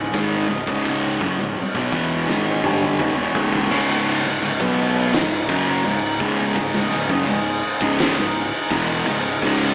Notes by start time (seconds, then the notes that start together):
Already playing: C#1 C#4 D#5
0.12 G#1 G#2 D#3 G#3, kick, crash
0.48 C#1 C#2 G#2
0.67 C#1 C#2 G#2 C#3, kick
0.85 kick, crash
1.19 F#1 F#2 C#3, kick
1.38 C#1 C#2 G#2
1.56 muted picked electric bass stroke, muted distorted electric guitar stroke, crash
1.75 B1 B2 F#3, kick
1.92 E1 E2 B2 E3, kick
2.10 C#5
2.28 G#1 G#2 D#3 G#3, snare
2.63 G1 G2 D3 G3, high tom
2.82 high tom
2.99 C#1 C#2 G#2, mid tom
3.17 E1 E2 B2
3.34 C#1 C#2 G#2 C#3, floor tom
3.53 floor tom
3.70 C#1 C#2 G#2 C#3 G#3 D#4, kick, crash
3.90 snare
4.06 crash
4.24 C#1 C#2 G#2
4.42 C#1 C#2 G#2, crash
4.59 B1 B2 F#3 B3, kick
4.78 crash
5.12 C#1 C#2 G#2, snare, crash
5.48 F#1 F#2 C#3 F#3, kick, crash
5.84 C#1 C#2 G#2, crash
6.19 C#1 C#2 G#2 C#3, kick, crash
6.55 C#1 C#2 G#2, kick, crash
6.73 C#1 C#2 G#2, snare
6.91 C#1 C#2 G#2, crash
7.09 F#1 F#2 C#3, kick
7.27 C#1 C#2 G#2, crash
7.63 crash
7.81 C#1 C#2 G#2 C#3, kick
7.99 snare, crash
8.17 C#1 C#2 G#2
8.34 crash
8.71 E1 E2 B2 E3, kick, crash
9.05 C#1 C#2 G#2, crash
9.40 C#1 C#2 G#2 C#3 C#4, kick, crash
9.62 snare